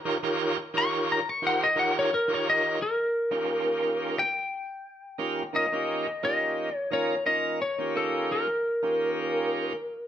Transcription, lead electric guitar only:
0, 0, Header, 1, 2, 480
1, 0, Start_track
1, 0, Tempo, 686499
1, 41, Time_signature, 4, 2, 24, 8
1, 7045, End_track
2, 0, Start_track
2, 0, Title_t, "Lead electric guitar"
2, 0, Program_c, 0, 29
2, 0, Note_on_c, 0, 82, 87
2, 269, Note_off_c, 0, 82, 0
2, 545, Note_on_c, 0, 85, 104
2, 766, Note_off_c, 0, 85, 0
2, 783, Note_on_c, 0, 82, 91
2, 905, Note_off_c, 0, 82, 0
2, 905, Note_on_c, 0, 85, 92
2, 1006, Note_off_c, 0, 85, 0
2, 1026, Note_on_c, 0, 78, 92
2, 1136, Note_off_c, 0, 78, 0
2, 1144, Note_on_c, 0, 75, 93
2, 1245, Note_off_c, 0, 75, 0
2, 1253, Note_on_c, 0, 78, 88
2, 1369, Note_off_c, 0, 78, 0
2, 1390, Note_on_c, 0, 73, 100
2, 1489, Note_off_c, 0, 73, 0
2, 1497, Note_on_c, 0, 70, 104
2, 1611, Note_off_c, 0, 70, 0
2, 1636, Note_on_c, 0, 73, 107
2, 1732, Note_off_c, 0, 73, 0
2, 1745, Note_on_c, 0, 75, 99
2, 1966, Note_off_c, 0, 75, 0
2, 1974, Note_on_c, 0, 70, 93
2, 2899, Note_off_c, 0, 70, 0
2, 2932, Note_on_c, 0, 79, 101
2, 3858, Note_off_c, 0, 79, 0
2, 3887, Note_on_c, 0, 75, 97
2, 4360, Note_off_c, 0, 75, 0
2, 4368, Note_on_c, 0, 75, 86
2, 4739, Note_off_c, 0, 75, 0
2, 4739, Note_on_c, 0, 73, 86
2, 4845, Note_off_c, 0, 73, 0
2, 4848, Note_on_c, 0, 73, 81
2, 5077, Note_off_c, 0, 73, 0
2, 5079, Note_on_c, 0, 75, 82
2, 5323, Note_off_c, 0, 75, 0
2, 5326, Note_on_c, 0, 73, 82
2, 5547, Note_off_c, 0, 73, 0
2, 5572, Note_on_c, 0, 69, 84
2, 5814, Note_off_c, 0, 69, 0
2, 5818, Note_on_c, 0, 70, 76
2, 7045, Note_off_c, 0, 70, 0
2, 7045, End_track
0, 0, End_of_file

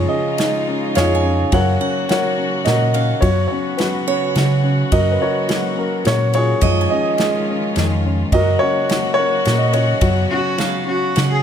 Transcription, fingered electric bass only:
0, 0, Header, 1, 2, 480
1, 0, Start_track
1, 0, Key_signature, 6, "major"
1, 0, Tempo, 566572
1, 1289, Time_signature, 3, 2, 24, 8
1, 9681, End_track
2, 0, Start_track
2, 0, Title_t, "Fingered electric bass"
2, 0, Program_c, 0, 33
2, 820, Note_on_c, 0, 41, 98
2, 1211, Note_off_c, 0, 41, 0
2, 1297, Note_on_c, 0, 42, 86
2, 1491, Note_off_c, 0, 42, 0
2, 2258, Note_on_c, 0, 46, 86
2, 2646, Note_off_c, 0, 46, 0
2, 2736, Note_on_c, 0, 42, 80
2, 2927, Note_off_c, 0, 42, 0
2, 3692, Note_on_c, 0, 49, 88
2, 4087, Note_off_c, 0, 49, 0
2, 4176, Note_on_c, 0, 42, 75
2, 4371, Note_off_c, 0, 42, 0
2, 5137, Note_on_c, 0, 46, 96
2, 5532, Note_off_c, 0, 46, 0
2, 5614, Note_on_c, 0, 42, 77
2, 5812, Note_off_c, 0, 42, 0
2, 6579, Note_on_c, 0, 41, 97
2, 6971, Note_off_c, 0, 41, 0
2, 7055, Note_on_c, 0, 42, 87
2, 7250, Note_off_c, 0, 42, 0
2, 8019, Note_on_c, 0, 46, 95
2, 8407, Note_off_c, 0, 46, 0
2, 8489, Note_on_c, 0, 42, 83
2, 8684, Note_off_c, 0, 42, 0
2, 9464, Note_on_c, 0, 49, 87
2, 9681, Note_off_c, 0, 49, 0
2, 9681, End_track
0, 0, End_of_file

